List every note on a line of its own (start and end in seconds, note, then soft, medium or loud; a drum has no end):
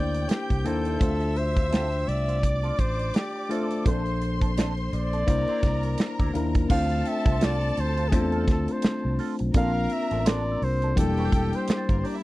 0.00 0.25 D2 medium
0.00 0.57 A#3 medium
0.00 0.58 D4 medium
0.00 0.58 E4 medium
0.00 0.59 C5 medium
0.00 0.31 D5 medium
0.00 0.98 G5 medium
0.00 0.98 G6 medium
0.14 muted clean electric guitar stroke soft
0.14 closed hi-hat medium
0.29 0.67 G4 medium
0.29 muted clean electric guitar stroke soft
0.29 snare medium
0.29 closed hi-hat medium
0.50 0.64 C2 medium
0.50 muted clean electric guitar stroke soft
0.50 kick medium
0.50 closed hi-hat soft
0.64 0.97 D#2 medium
0.64 0.98 A#3 medium
0.64 0.77 D4 medium
0.64 0.99 D4 medium
0.64 0.78 E4 medium
0.64 0.99 E4 medium
0.64 1.39 A4 loud
0.64 0.78 A#4 medium
0.64 0.99 C5 medium
0.64 closed hi-hat medium
0.85 0.95 D4 soft
0.85 0.95 E4 soft
0.85 0.95 C5 medium
0.85 closed hi-hat medium
0.99 2.04 D2 loud
0.99 2.32 A3 medium
0.99 1.16 C4 medium
0.99 2.33 D4 medium
0.99 1.16 F4 medium
0.99 2.33 F4 medium
0.99 1.17 A4 medium
0.99 2.34 C5 medium
0.99 2.41 E5 medium
0.99 2.41 E6 medium
0.99 kick loud
0.99 closed hi-hat medium
1.21 closed hi-hat soft
1.36 2.10 C5 loud
1.36 muted clean electric guitar stroke soft
1.36 closed hi-hat medium
1.56 1.66 C4 soft
1.56 1.66 F4 soft
1.56 1.65 C5 medium
1.56 kick medium
1.56 closed hi-hat soft
1.71 1.87 C4 medium
1.71 1.88 F4 medium
1.71 1.88 A4 medium
1.71 4.11 G5 medium
1.71 snare loud
1.71 closed hi-hat medium
1.92 closed hi-hat soft
2.07 2.70 C2 medium
2.07 2.81 D5 loud
2.07 muted clean electric guitar stroke soft
2.07 closed hi-hat medium
2.28 2.38 C4 soft
2.28 2.37 F4 soft
2.28 2.37 C5 medium
2.28 closed hi-hat soft
2.43 3.83 D5 medium
2.43 3.83 D6 medium
2.43 muted clean electric guitar stroke soft
2.43 kick medium
2.43 closed hi-hat medium
2.63 2.76 C4 medium
2.63 2.75 F4 medium
2.63 2.75 A4 medium
2.63 closed hi-hat soft
2.79 3.10 A1 medium
2.79 3.17 C5 medium
2.79 kick medium
2.79 closed hi-hat medium
2.99 muted clean electric guitar stroke soft
2.99 closed hi-hat soft
3.14 3.53 G4 medium
3.14 muted clean electric guitar stroke soft
3.14 snare medium
3.14 closed hi-hat medium
3.36 muted clean electric guitar stroke soft
3.49 3.83 A3 medium
3.49 3.65 C4 medium
3.49 3.83 D4 medium
3.49 3.66 F4 medium
3.49 3.83 F4 medium
3.49 3.66 A4 medium
3.49 3.86 A4 medium
3.49 3.84 C5 medium
3.49 4.17 E5 medium
3.49 closed hi-hat medium
3.71 muted clean electric guitar stroke soft
3.71 closed hi-hat medium
3.85 4.89 A#1 loud
3.85 5.17 A#3 medium
3.85 4.01 C4 medium
3.85 5.18 D4 medium
3.85 4.02 D4 medium
3.85 5.18 A4 medium
3.85 4.02 A4 medium
3.85 5.25 C5 medium
3.85 4.54 C5 medium
3.85 5.19 C5 medium
3.85 5.25 C6 loud
3.85 kick loud
3.85 closed hi-hat medium
4.06 muted clean electric guitar stroke soft
4.06 closed hi-hat soft
4.22 muted clean electric guitar stroke soft
4.22 closed hi-hat medium
4.41 4.51 C4 soft
4.41 4.51 D4 medium
4.41 4.51 A4 medium
4.41 kick medium
4.41 closed hi-hat soft
4.57 4.72 C4 medium
4.57 4.73 D4 loud
4.57 4.73 A4 medium
4.57 snare loud
4.57 closed hi-hat loud
4.77 closed hi-hat soft
4.92 5.24 A#1 medium
4.92 6.32 D5 loud
4.92 muted clean electric guitar stroke soft
4.92 closed hi-hat medium
5.13 5.23 C4 soft
5.13 5.22 D4 medium
5.13 5.22 A4 medium
5.13 closed hi-hat soft
5.27 5.46 C2 loud
5.27 6.27 A#3 medium
5.27 6.27 D4 medium
5.27 6.28 E4 medium
5.27 6.67 A#4 medium
5.27 6.28 C5 medium
5.27 6.67 A#5 loud
5.27 kick medium
5.27 closed hi-hat medium
5.48 5.60 D4 medium
5.48 5.60 E4 medium
5.48 5.60 C5 medium
5.48 muted fingered electric bass stroke soft
5.48 closed hi-hat soft
5.63 5.95 C2 medium
5.63 kick medium
5.63 snare soft
5.63 closed hi-hat medium
5.83 muted clean electric guitar stroke soft
5.83 closed hi-hat medium
5.98 muted clean electric guitar stroke soft
5.98 snare medium
5.98 closed hi-hat medium
6.19 6.33 D2 loud
6.19 6.31 D4 medium
6.19 6.31 E4 medium
6.19 6.31 A#4 medium
6.19 kick medium
6.19 closed hi-hat soft
6.33 6.66 D#2 medium
6.33 6.67 A#3 medium
6.33 6.68 D4 medium
6.33 6.68 E4 medium
6.33 6.68 A#4 medium
6.33 closed hi-hat medium
6.55 muted clean electric guitar stroke soft
6.55 kick medium
6.55 closed hi-hat medium
6.69 7.01 D2 loud
6.69 8.02 A3 medium
6.69 6.85 C4 medium
6.69 8.02 C4 medium
6.69 8.03 D4 medium
6.69 6.78 E4 medium
6.69 6.86 F4 medium
6.69 9.15 A4 loud
6.69 6.86 A4 medium
6.69 8.03 C5 medium
6.69 7.09 F5 loud
6.69 9.15 A5 loud
6.69 kick loud
6.69 crash loud
6.78 8.06 F4 medium
6.90 muted clean electric guitar stroke soft
6.90 closed hi-hat soft
7.05 7.46 E5 loud
7.05 9.44 G5 medium
7.05 muted clean electric guitar stroke soft
7.05 closed hi-hat medium
7.25 7.70 C2 medium
7.25 7.35 C4 soft
7.25 7.35 F4 soft
7.25 7.35 C5 medium
7.25 kick loud
7.25 closed hi-hat soft
7.32 9.65 C6 medium
7.40 7.56 C4 medium
7.40 7.57 F4 medium
7.40 7.57 A4 medium
7.40 snare loud
7.40 closed hi-hat loud
7.44 7.82 D5 loud
7.61 closed hi-hat soft
7.77 8.13 D2 medium
7.77 8.10 C5 medium
7.77 muted clean electric guitar stroke soft
7.77 closed hi-hat medium
7.97 8.07 C4 soft
7.97 8.07 F4 soft
7.97 8.06 C5 medium
7.97 closed hi-hat soft
8.09 8.48 E2 loud
8.09 9.44 A3 medium
8.09 9.44 C4 medium
8.09 9.45 D4 medium
8.09 8.17 G#4 medium
8.09 kick medium
8.13 9.45 F4 medium
8.13 8.50 A4 medium
8.13 9.45 C5 medium
8.13 closed hi-hat medium
8.32 8.45 C4 medium
8.32 8.44 F4 medium
8.32 8.44 A4 medium
8.32 closed hi-hat soft
8.48 8.66 D2 medium
8.48 8.74 A4 medium
8.48 muted clean electric guitar stroke soft
8.48 kick medium
8.48 snare soft
8.48 closed hi-hat medium
8.68 muted clean electric guitar stroke soft
8.68 closed hi-hat medium
8.72 9.21 C5 medium
8.82 muted fingered electric bass stroke soft
8.82 snare loud
8.82 closed hi-hat medium
9.04 9.18 C2 medium
9.04 muted clean electric guitar stroke soft
9.19 9.34 C4 medium
9.19 9.35 F4 medium
9.19 9.35 A4 medium
9.19 open hi-hat medium
9.39 9.53 B1 medium
9.39 muted clean electric guitar stroke soft
9.39 closed hi-hat medium
9.54 9.86 A#1 loud
9.54 10.87 A#3 medium
9.54 10.87 C4 medium
9.54 9.70 C4 medium
9.54 10.87 D4 medium
9.54 9.71 D4 medium
9.54 10.88 F4 medium
9.54 9.71 A4 medium
9.54 10.59 A#4 loud
9.54 10.88 A#4 medium
9.54 9.95 F5 loud
9.54 10.59 A#5 loud
9.54 kick loud
9.54 closed hi-hat medium
9.76 muted clean electric guitar stroke soft
9.90 10.30 E5 loud
9.90 muted clean electric guitar stroke soft
9.90 closed hi-hat medium
10.11 10.55 A1 medium
10.11 10.20 C4 soft
10.11 10.20 D4 soft
10.11 10.20 A4 medium
10.11 closed hi-hat soft
10.25 10.41 C4 medium
10.25 10.42 D4 medium
10.25 10.42 A4 medium
10.25 10.65 D5 loud
10.25 11.28 C6 medium
10.25 snare loud
10.25 closed hi-hat loud
10.52 11.30 E6 soft
10.62 10.93 C2 medium
10.62 10.98 C5 loud
10.62 muted clean electric guitar stroke soft
10.62 open hi-hat soft
10.82 10.92 C4 medium
10.82 10.92 D4 medium
10.82 10.92 A4 medium
10.82 closed hi-hat soft
10.95 11.28 E1 loud
10.95 11.04 F3 medium
10.95 12.23 A#3 medium
10.95 12.23 D4 medium
10.95 12.23 E4 medium
10.95 11.79 G4 medium
10.95 12.23 G4 loud
10.95 11.31 A4 medium
10.95 11.79 G5 loud
10.95 muted clean electric guitar stroke soft
10.95 kick medium
10.95 closed hi-hat medium
11.02 12.23 G3 medium
11.18 11.32 D4 medium
11.18 11.33 G4 medium
11.18 11.34 C5 medium
11.18 closed hi-hat soft
11.31 11.51 E1 loud
11.31 11.57 A4 medium
11.31 12.23 E6 medium
11.31 kick medium
11.31 closed hi-hat medium
11.53 12.05 C5 medium
11.53 muted clean electric guitar stroke soft
11.53 closed hi-hat medium
11.57 12.23 G6 medium
11.68 muted fingered electric bass stroke soft
11.68 muted clean electric guitar stroke soft
11.68 snare medium
11.68 closed hi-hat medium
11.77 12.23 A6 medium
11.89 12.02 G1 medium
11.89 11.97 A#3 medium
11.89 11.97 A#4 medium
11.89 muted clean electric guitar stroke soft
11.89 kick medium
11.89 closed hi-hat soft
11.97 12.04 C4 medium
11.97 12.04 C5 medium
12.03 12.16 D4 medium
12.03 12.15 D4 medium
12.03 12.16 G4 medium
12.03 12.16 A#4 medium
12.03 12.15 D5 medium
12.03 open hi-hat medium
12.15 12.23 E4 medium
12.15 12.23 E5 medium